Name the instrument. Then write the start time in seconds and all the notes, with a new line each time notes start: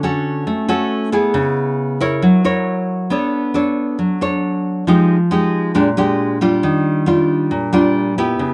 nylon-string guitar
Already playing: D3
0.03 C#4 F#4 A4
0.47 A3
0.68 C#4 F#4 A4
1.12 B3 E4 G#4
1.34 C#3
2.00 E4 A#4 C#5
2.22 F#3
2.44 E4 A#4 C#5
3.10 B3 D4 A4 C#5
3.54 D4 A4 C#5
3.99 F#3
4.21 D4 A4 C#5
4.87 F3 G#3 D#4 G4
5.31 G#3 D#4 G4
5.75 A#2 G#3 D4 G4
5.97 G#3 D4 G4
6.41 G3 D4 F4
6.63 D#3
7.06 G3 D4 F4
7.51 A#2
7.73 G3 D4 F4
8.18 B3 E4 G4
8.39 C#3